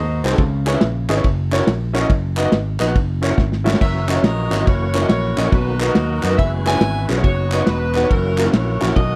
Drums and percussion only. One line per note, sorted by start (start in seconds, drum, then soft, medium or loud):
0.24 clap medium
0.24 ride medium
0.38 kick loud
0.38 ride medium
0.66 clap loud
0.66 ride medium
0.81 snare loud
0.81 ride medium
1.09 clap medium
1.09 ride medium
1.17 snare soft
1.24 kick loud
1.24 ride medium
1.53 snare soft
1.53 clap medium
1.53 ride medium
1.67 snare loud
1.67 ride medium
1.96 clap medium
1.96 ride medium
2.10 kick loud
2.10 ride medium
2.37 clap loud
2.37 ride medium
2.52 snare loud
2.52 ride medium
2.80 clap medium
2.80 ride medium
2.96 kick loud
2.96 ride medium
3.23 snare soft
3.23 clap medium
3.23 ride medium
3.38 kick loud
3.38 snare medium
3.52 snare medium
3.67 snare loud
3.67 clap medium
3.74 snare loud
3.81 kick loud
3.81 crash medium
4.09 clap medium
4.09 ride medium
4.24 snare loud
4.24 ride medium
4.52 clap medium
4.52 ride medium
4.67 kick loud
4.67 ride medium
4.95 snare soft
4.95 clap loud
4.95 ride medium
5.09 snare loud
5.09 ride medium
5.38 clap medium
5.38 ride medium
5.52 kick loud
5.52 ride medium
5.80 clap loud
5.80 ride medium
5.95 snare loud
5.95 ride medium
6.23 clap medium
6.23 ride medium
6.31 snare soft
6.39 kick loud
6.39 ride medium
6.67 snare soft
6.67 clap loud
6.67 ride medium
6.81 snare loud
6.81 ride medium
7.10 clap medium
7.10 ride medium
7.24 kick loud
7.24 ride medium
7.52 clap medium
7.52 ride medium
7.67 snare loud
7.67 ride medium
7.95 clap medium
7.95 ride medium
8.03 snare soft
8.11 kick loud
8.11 ride medium
8.38 clap medium
8.38 ride medium
8.53 snare loud
8.53 ride medium
8.82 clap medium
8.82 ride medium
8.96 kick loud
8.96 ride medium